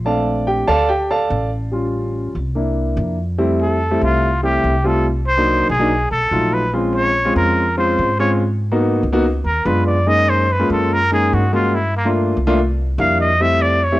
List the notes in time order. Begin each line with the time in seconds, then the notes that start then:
Already playing: A#1
0.05 A3 C4 D4 A4 D5 F5 A5
0.47 G4 G5
0.67 D2 A4 D5 F5 A5
0.88 G4 G5
1.10 A4 D5 F5 A5
1.30 A1
1.72 G3 C#4 F4
2.35 C2
2.55 A#3 D4 E4
2.97 F2
3.38 G3 A3 C4 E4
3.62 A4
3.91 G3 A3 C4 E4
4.01 C2 F4
4.43 G3 A3 C4 E4 G4
4.64 C2
4.84 G3 A3 C4 F4 A4
5.27 C5
5.37 F#3 A#3 D4 D#4
5.69 B1 G#4
5.79 F#3 A#3 D4 D#4
6.11 B1 A4
6.31 A#1 F#3 A3 D#4 F4
6.53 B4
6.73 G#3 C4 C#4 F4
6.95 C#5
7.25 G#3 C4 C#4 F4
7.36 F2 A#4
7.77 G#3 C4 C#4 F4 C5
7.98 G#2
8.19 G#3 C4 C#4 F4 C#5
8.71 A#3 B3 D#4 F#4
9.03 C#2
9.12 A#3 B3 D#4 F#4
9.44 D#2 A#4
9.65 F#2 G#3 B3 D4 F4 B4
9.86 D5
10.06 G#3 A#3 C#4 D#4 D#5
10.29 C5
10.52 B4
10.59 G#3 A#3 C#4 F4
10.70 F#2 A4
10.93 A#4
11.11 G#3 A#3 C#4 D#4 G#4
11.33 G2 F#4
11.53 G#3 A#3 C#4 F4 F#4
11.74 E4
11.97 A#3
12.05 A3 A#3 D4 F4
12.37 C2
12.47 A3 A#3 D4 F4
12.98 F2 G3 A#3 D4 E4 F5
13.20 D#5
13.40 G3 A3 C4 E4 E5
13.62 D5
13.84 C#5
13.92 G3 A3 C4 E4